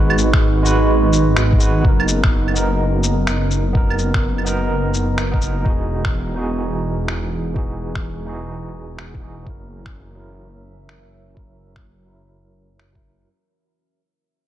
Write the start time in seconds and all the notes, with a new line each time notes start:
Already playing: G#1 G#3 B3 D#4 F#4 G#4 B4 D#5
0.10 claves
0.18 shaker
0.34 finger snap, kick
0.63 G#3 F#4, shaker
0.67 B4
1.13 shaker
1.36 finger snap, shaker
1.53 kick
1.58 G#3 F#4, shaker
1.62 B4
1.80 B3
1.84 F#1 D#4 A#4, kick
2.00 claves
2.08 shaker
2.24 A#4, finger snap, kick
2.48 claves
2.54 B3 D#4, shaker
2.58 A#4
3.03 shaker
3.27 finger snap, shaker
3.51 shaker
3.73 B3 D#4 A#4, kick
3.90 claves
3.99 shaker
4.14 finger snap, kick
4.38 claves
4.44 B3 D#4, shaker
4.48 A#4
4.94 shaker
5.18 finger snap, shaker
5.32 B3 D#4, kick
5.36 A#4
5.41 shaker
5.62 E1 E3 D#4, kick
5.67 F#4 G#4
5.86 E3
5.94 G#4
6.05 finger snap, kick
6.35 E3 D#4 F#4
6.39 G#4
7.08 finger snap
7.54 E3 D#4 F#4, kick
7.58 G#4
7.95 finger snap, kick
8.25 E3 D#4 F#4 G#4
8.99 finger snap
9.15 kick
9.20 E3 D#4 F#4 G#4
9.42 F#3 E4
9.47 F#1 C#4 A#4, kick
9.72 E5
9.86 finger snap, kick
10.07 A#4
10.15 F#3 E4 A#4
10.89 finger snap
11.35 F#3 E4, kick
11.39 A#4
11.76 finger snap, kick
12.06 F#3 E4 A#4
12.79 finger snap
12.93 F#3 E4 A#4, kick